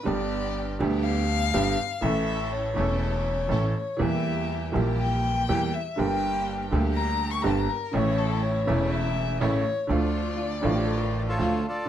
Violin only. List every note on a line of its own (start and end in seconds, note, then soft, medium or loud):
0.05 0.80 D5 medium
1.03 2.03 F5 loud
2.02 2.53 E5 medium
2.52 3.00 C#5 medium
3.01 3.71 C#5 medium
3.77 4.03 C#5 medium
4.01 4.76 E5 medium
5.00 5.75 G5 medium
5.73 6.00 E5 medium
5.99 6.72 G5 medium
6.94 7.32 A#5 loud
7.31 7.43 C#6 medium
7.42 7.51 A#5 medium
7.50 7.60 A5 medium
7.59 7.71 A#5 medium
7.69 7.95 A#4 medium
7.93 8.19 C#5 medium
8.18 8.43 A4 medium
8.42 8.93 C#5 medium
8.91 9.42 E5 medium
9.41 9.92 C#5 medium
9.91 11.64 D5 medium